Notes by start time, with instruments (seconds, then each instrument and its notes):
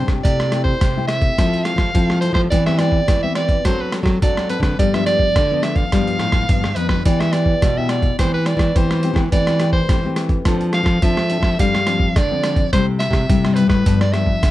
Already playing: nylon-string guitar G2 C4 D4 G4
0.06 nylon-string guitar C3, kick, cross-stick, closed hi-hat
0.23 nylon-string guitar C3 A3 E4 G4, soprano saxophone D5, kick, closed hi-hat
0.40 cross-stick, closed hi-hat
0.52 nylon-string guitar A3 E4 G4, cross-stick, closed hi-hat
0.64 soprano saxophone C5, kick
0.81 nylon-string guitar C3, kick, cross-stick, closed hi-hat
0.97 nylon-string guitar A3 E4 G4
1.08 soprano saxophone E5, cross-stick, closed hi-hat
1.22 kick, closed hi-hat
1.38 nylon-string guitar F3 C4 E4 A4, kick, cross-stick, closed hi-hat
1.53 closed hi-hat
1.64 soprano saxophone F5, cross-stick, closed hi-hat
1.76 nylon-string guitar F3, kick, cross-stick, closed hi-hat
1.95 nylon-string guitar C3 F3 C4 E4 A4, kick, closed hi-hat
2.10 cross-stick
2.21 nylon-string guitar C4 E4 A4, soprano saxophone C5, closed hi-hat
2.33 nylon-string guitar F3, soprano saxophone C5, kick, cross-stick
2.50 nylon-string guitar E3 B3 C4 G4, soprano saxophone D5, kick, closed hi-hat
2.66 nylon-string guitar B3 C4 G4, soprano saxophone E5, cross-stick, closed hi-hat
2.78 nylon-string guitar B3 C4 G4, soprano saxophone D5, cross-stick, closed hi-hat
2.92 kick
3.08 nylon-string guitar E3, kick, cross-stick, closed hi-hat
3.23 nylon-string guitar B3 C4 G4, soprano saxophone E5
3.35 soprano saxophone D5, cross-stick, closed hi-hat
3.49 kick, closed hi-hat
3.65 nylon-string guitar F#3 C4 D4 A4, soprano saxophone C5, kick, cross-stick, closed hi-hat
3.81 soprano saxophone B4
3.92 cross-stick, closed hi-hat
4.03 nylon-string guitar F#3, kick, cross-stick, closed hi-hat
4.22 nylon-string guitar F#3 C4 D4 A4, soprano saxophone D5, kick, closed hi-hat
4.37 cross-stick, closed hi-hat
4.49 nylon-string guitar C4 D4 A4, soprano saxophone B4, closed hi-hat
4.60 nylon-string guitar D3, soprano saxophone B4, kick, cross-stick, closed hi-hat
4.79 nylon-string guitar G2 F3 G3 B3 D4, soprano saxophone D5, kick, closed hi-hat
4.94 nylon-string guitar F3 B3 D4, soprano saxophone E5, cross-stick, closed hi-hat
5.06 nylon-string guitar F3 B3 D4, soprano saxophone D5, cross-stick, closed hi-hat
5.19 kick
5.36 nylon-string guitar D3, kick, cross-stick, closed hi-hat
5.51 nylon-string guitar F3 B3 D4
5.63 soprano saxophone E5, cross-stick, closed hi-hat
5.76 soprano saxophone F5, kick, closed hi-hat
5.92 nylon-string guitar G2 F3 G3 B3 D4, kick, cross-stick, closed hi-hat
6.08 closed hi-hat
6.19 nylon-string guitar A2, cross-stick, closed hi-hat
6.32 kick, cross-stick, closed hi-hat
6.49 nylon-string guitar G2 D3 F3 B3 D4, kick, closed hi-hat
6.64 cross-stick
6.76 nylon-string guitar F2 F3 B3 D4, soprano saxophone B4, closed hi-hat
6.89 soprano saxophone B4, kick, cross-stick
7.05 nylon-string guitar E3 B3 E4 G4, soprano saxophone D5, kick, closed hi-hat
7.20 soprano saxophone E5, cross-stick, closed hi-hat
7.32 nylon-string guitar B3 E4 G4, soprano saxophone D5, cross-stick, closed hi-hat
7.46 kick
7.62 nylon-string guitar B2, kick, cross-stick, closed hi-hat
7.77 nylon-string guitar B3 E4 G4, soprano saxophone E5
7.89 soprano saxophone D5, cross-stick, closed hi-hat
8.02 kick, closed hi-hat
8.19 nylon-string guitar E3 B3 C4 G4, soprano saxophone C5, kick, cross-stick, closed hi-hat
8.34 soprano saxophone B4
8.46 soprano saxophone D5, cross-stick, closed hi-hat
8.57 nylon-string guitar E3, kick, cross-stick, closed hi-hat
8.76 nylon-string guitar E3 B3 C4 G4, soprano saxophone C5, kick, closed hi-hat
8.91 cross-stick, closed hi-hat
9.03 nylon-string guitar B3 C4 G4, closed hi-hat
9.14 nylon-string guitar E3, kick, cross-stick, closed hi-hat
9.32 nylon-string guitar E3 A3 C4 G4, soprano saxophone D5, kick, closed hi-hat
9.47 cross-stick, closed hi-hat
9.60 nylon-string guitar A3 C4 G4, cross-stick, closed hi-hat
9.73 soprano saxophone C5, kick
9.89 nylon-string guitar E3 A3 C4 G4, kick, cross-stick, closed hi-hat
10.04 nylon-string guitar A3 C4 G4
10.16 cross-stick, closed hi-hat
10.29 kick, closed hi-hat
10.45 nylon-string guitar F3 C4 D4 A4, kick, cross-stick, closed hi-hat
10.61 closed hi-hat
10.73 soprano saxophone F5, cross-stick, closed hi-hat
10.84 nylon-string guitar F3, kick, cross-stick, closed hi-hat
11.02 nylon-string guitar F3 C4 D4 A4, soprano saxophone E5, kick, closed hi-hat
11.17 cross-stick
11.30 nylon-string guitar C4 D4 A4, closed hi-hat
11.40 nylon-string guitar F3, kick, cross-stick
11.59 nylon-string guitar G2 F3 G3 C4 D4, soprano saxophone F5, kick, closed hi-hat
11.75 cross-stick, closed hi-hat
11.86 nylon-string guitar F3 C4 D4, cross-stick, closed hi-hat
12.00 kick
12.16 nylon-string guitar D3, soprano saxophone D5, kick, cross-stick, closed hi-hat
12.31 nylon-string guitar F3 C4 D4
12.44 cross-stick, closed hi-hat
12.56 kick, closed hi-hat
12.73 nylon-string guitar C3 G3 A3 E4, soprano saxophone C5, kick, cross-stick, closed hi-hat
12.99 soprano saxophone E5, cross-stick, closed hi-hat
13.11 nylon-string guitar C3, kick, cross-stick, closed hi-hat
13.29 nylon-string guitar G2 C3 G3 A3 E4, kick, closed hi-hat
13.45 cross-stick, closed hi-hat
13.54 nylon-string guitar G3 A3 E4, soprano saxophone B4 C5, closed hi-hat
13.67 nylon-string guitar A2, soprano saxophone B4, kick, cross-stick, closed hi-hat
13.86 nylon-string guitar G2 F3 B3 D4, kick, closed hi-hat
14.01 soprano saxophone D5, cross-stick, closed hi-hat
14.13 nylon-string guitar F3 B3 D4, soprano saxophone E5, cross-stick, closed hi-hat
14.26 kick
14.43 nylon-string guitar D3, kick, cross-stick, closed hi-hat